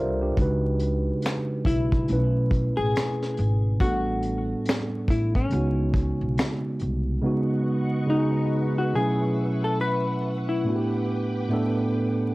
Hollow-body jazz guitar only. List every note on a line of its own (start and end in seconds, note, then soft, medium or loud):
1.66 2.73 E4 medium
2.77 3.80 G#4 loud
3.81 5.13 F#4 loud
5.10 5.36 E4 medium
5.36 6.59 C#4 medium
8.10 8.78 D#4 medium
8.78 8.95 F#4 medium
8.95 9.64 G#4 loud
9.64 9.79 A4 medium
9.81 10.51 B4 loud
10.49 12.35 E4 medium